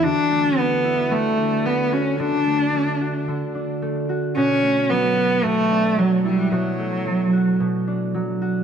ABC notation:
X:1
M:4/4
L:1/16
Q:1/4=111
K:Bm
V:1 name="Cello"
D4 B,4 A,4 B,2 C2 | D8 z8 | C4 B,4 A,4 F,2 G,2 | F,8 z8 |]
V:2 name="Harp"
[D,F]2 A,2 A,2 E F D,2 D2 A,2 F2 | [D,F]2 A,2 A,2 F2 D,2 D2 A,2 F2 | [B,,F]2 A,2 F,2 F2 B,,2 D2 F,2 E F | [B,,F]2 A,2 F,2 F2 B,,2 D2 F,2 F2 |]